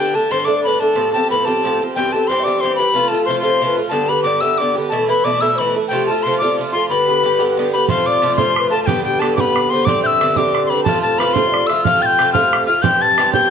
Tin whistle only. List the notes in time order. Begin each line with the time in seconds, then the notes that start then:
Already playing: G5
0.15 A5
0.31 C6
0.45 D6
0.64 B5
0.80 A5
1.13 A5
1.30 B5
1.45 A5
1.95 G5
2.12 A5
2.27 C6
2.44 D6
2.60 C6
2.75 B5
3.08 A5
3.25 C6
3.39 C6
3.89 A5
4.09 B5
4.23 D6
4.41 E6
4.58 D6
4.89 A5
5.08 B5
5.24 D6
5.41 E6
5.58 B5
5.88 G5
6.07 A5
6.23 C6
6.39 D6
6.72 C6
6.89 B5
7.73 B5
7.88 C6
8.06 D6
8.36 C6
8.70 A5
8.83 G5 A5
9.04 G5
9.20 A5
9.36 D6
9.40 B5
9.70 C6
9.85 D6
10.03 E6 G6
10.34 D6 E6
10.66 B5 C6
10.84 A5
11.02 A5
11.18 B5
11.33 C6
11.67 E6
11.84 F6
12.02 G6 A6
12.33 F6
12.67 F6
12.82 G6
13.01 A6
13.33 G6